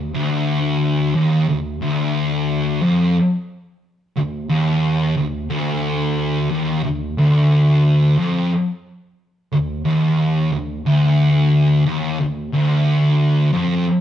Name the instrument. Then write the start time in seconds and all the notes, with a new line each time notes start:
distorted electric guitar
0.15 D2
1.15 D#2
1.49 D2
1.82 D2
2.82 F2
4.17 D2
4.49 D#2
5.17 D2
5.50 D2
6.50 D#2
6.83 D2
7.18 D2
8.18 F2
9.53 D2
9.85 D#2
10.53 D2
10.86 D2
11.86 D#2
12.20 D2
12.53 D2
13.53 F2